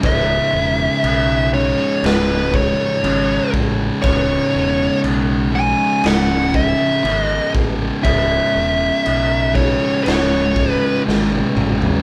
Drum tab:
CC |x---x---x---x---|x---x---x---x---|x---x---x-------|
SD |--------o-------|--------o-------|--------o---o---|
T1 |----------------|----------------|-------------o--|
T2 |----------------|----------------|--------------o-|
FT |----------------|----------------|---------------o|
BD |o---------o---o-|o---------o---o-|o-----o---o-----|